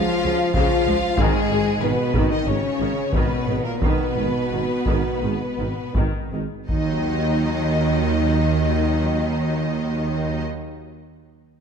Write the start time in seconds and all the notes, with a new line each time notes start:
Already playing: F3 F4 F5
0.23 C#2 C#3 F3
0.54 C#2 C#3 F3 F4 F5, taiko
0.86 C#2 F3 G#3
1.17 G#1 G#2 D#3 G#3 G#4, taiko
1.49 G#1 D#3 G#3
1.80 G#1 B2 D#3 B3 B4
2.14 G#1 D#3, taiko
2.28 D#3 D#4 D#5
2.45 G#1 C#3 D#3 C#4 C#5
2.49 C#3 G#3
2.78 G#1 D#3
3.12 G#1 B2 D#3 B3 B4, taiko
3.46 G#1 D#3 G#3
3.64 A#2 A#3 A#4
3.80 G#1 B2 B3 B4, taiko
3.84 D#3
4.16 G#1 D#3 G#3
4.51 G#1 D#3
4.86 G#1 D#3, taiko
5.22 G#1 D#3 G#3
5.58 G#1 D#3
5.95 G#1 D#3, taiko
6.32 G#1 D#3 G#3
6.68 D#2 D#3 F#3 D#4 D#5, taiko